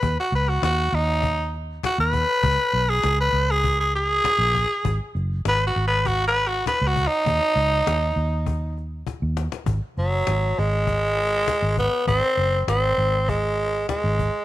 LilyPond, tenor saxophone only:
\new Staff \with { instrumentName = "Tenor saxophone" } { \time 4/4 \key des \major \tempo 4 = 100 ces''16 ges'16 ces''16 ges'16 ges'8 ees'4 r8 ges'16 ces''8.~ | ces''8. aes'8 ces''8 aes'8 aes'16 aes'4.~ | aes'8 r8 \tuplet 3/2 { ces''8 ges'8 ces''8 ges'8 ces''8 ges'8 ces''8 ges'8 ees'8~ } | ees'2~ ees'8. r4 r16 |
r8 ges4 aes2 ces'8 | c'4 c'4 aes4 aes4 | }